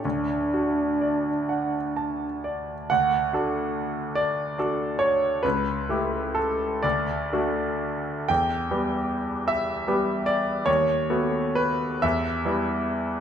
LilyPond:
<<
  \new Staff \with { instrumentName = "Grand piano" } { \time 6/8 \key d \major \tempo 4. = 46 << { r2. | fis''4. d''4 cis''8 | b'4 a'8 d''4. | g''4. e''4 d''8 |
cis''4 b'8 e''4. | } \\ { d,8 fis'8 d''8 fis''8 a''8 d''8 | d,8 <d' fis' a'>4. <d' fis' a'>4 | cis,8 <a e' g'>4 d,8 <a d' fis'>4 | e,8 <g b g'>4. <g b g'>4 |
dis,8 <a b fis'>4 e,8 <g b e'>4 | } >> }
  \new Staff \with { instrumentName = "French horn" } { \time 6/8 \key d \major d'2~ d'8 r8 | r2. | r2. | r2. |
r2. | }
>>